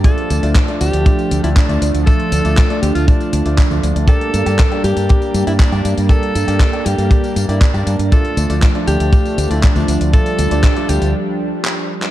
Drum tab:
HH |xxxxxxxxxxxxxxxx|xxxxxxxxxxxxxxxx|xxxxxxxxxxxxxxxx|xxxxxxxxxxxxxxxx|
TB |x-xxx-xxxxxxxxxx|x-xxx-xxxxxxxxxx|x-xxx-xxxxxxxxxx|x-xxx-xxxxxxxxxx|
CP |----x-------x---|----x-------x---|----x-------x---|----x-------x---|
BD |o---o---o---o---|o---o---o---o---|o---o---o---o---|o---o---o---o---|

HH |xxxxxxxxxxxxxxxx|xxxxxxxx--------|
TB |x-xxx-xxxxxxxxxx|xxxxx-xx--------|
CP |----x-------x---|----x-------x--x|
BD |o---o---o---o---|o---o-----------|